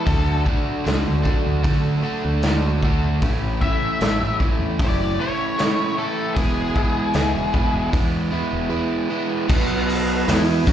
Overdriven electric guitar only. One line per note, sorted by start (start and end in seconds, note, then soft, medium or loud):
0.06 0.45 D3 medium
0.06 0.46 A3 medium
0.06 0.45 D4 medium
0.06 0.45 F#4 medium
0.46 0.83 D3 medium
0.46 0.85 A3 medium
0.46 0.84 D4 medium
0.46 0.85 F#4 medium
0.84 1.22 D3 medium
0.84 1.23 A3 medium
0.84 1.23 D4 medium
0.84 1.24 F#4 medium
1.23 1.62 D3 medium
1.23 1.63 A3 medium
1.23 1.63 D4 medium
1.23 1.63 F#4 medium
1.63 2.01 D3 medium
1.63 2.01 A3 medium
1.63 2.02 D4 loud
1.63 2.02 F#4 medium
2.02 2.42 D3 medium
2.02 2.42 A3 medium
2.02 2.43 D4 medium
2.02 2.43 F#4 medium
2.43 2.82 D3 medium
2.43 2.83 A3 medium
2.43 2.83 D4 medium
2.43 2.84 F#4 medium
2.83 3.20 D3 medium
2.83 3.20 A3 medium
2.83 3.20 D4 medium
2.83 3.21 F#4 medium
3.22 3.61 A2 medium
3.22 3.62 E3 medium
3.22 3.62 A3 medium
3.22 3.62 C#4 medium
3.22 3.62 E4 medium
3.62 3.99 A2 medium
3.62 4.01 E3 medium
3.62 4.00 A3 medium
3.62 4.01 C#4 medium
3.62 4.02 E4 medium
4.01 4.40 A2 medium
4.01 4.41 E3 medium
4.01 4.41 A3 medium
4.01 4.41 C#4 loud
4.01 4.42 E4 medium
4.41 4.78 A2 medium
4.41 4.78 E3 medium
4.41 4.79 A3 medium
4.41 4.79 C#4 medium
4.41 4.80 E4 medium
4.79 5.19 A2 medium
4.79 5.19 E3 medium
4.79 5.20 A3 medium
4.79 5.20 C#4 loud
4.79 5.20 E4 medium
5.20 5.57 A2 medium
5.20 5.58 E3 medium
5.20 5.58 A3 medium
5.20 5.58 C#4 medium
5.20 5.59 E4 medium
5.58 5.96 A2 medium
5.58 5.96 E3 medium
5.58 5.97 A3 medium
5.58 5.97 C#4 medium
5.58 5.97 E4 medium
5.97 6.34 A2 medium
5.97 6.34 E3 medium
5.97 6.34 A3 medium
5.97 6.34 C#4 medium
5.97 6.35 E4 medium
6.37 6.76 E3 medium
6.37 6.76 G#3 medium
6.37 6.76 B3 medium
6.37 6.77 E4 loud
6.77 7.13 E3 medium
6.77 7.13 G#3 medium
6.77 7.13 B3 medium
6.77 7.14 E4 medium
7.14 7.51 E3 medium
7.14 7.52 G#3 medium
7.14 7.53 B3 loud
7.14 7.53 E4 medium
7.53 7.91 E3 medium
7.53 7.91 G#3 medium
7.53 7.92 B3 medium
7.53 7.93 E4 medium
7.92 8.29 E3 medium
7.92 8.30 G#3 medium
7.92 8.31 B3 medium
7.92 8.31 E4 medium
8.31 8.68 E3 medium
8.31 8.69 G#3 medium
8.31 8.69 B3 medium
8.31 8.70 E4 medium
8.70 9.08 E3 medium
8.70 9.09 G#3 medium
8.70 9.09 B3 medium
8.70 9.09 E4 medium
9.09 9.47 E3 medium
9.09 9.47 G#3 medium
9.09 9.47 B3 medium
9.09 9.47 E4 medium
9.48 10.26 B2 medium
9.48 10.26 F#3 medium
9.48 10.26 B3 loud
10.28 10.66 E3 medium
10.28 10.66 B3 medium
10.28 10.66 E4 loud
10.67 10.73 F#3 medium
10.67 10.73 C#4 medium
10.67 10.73 F#4 medium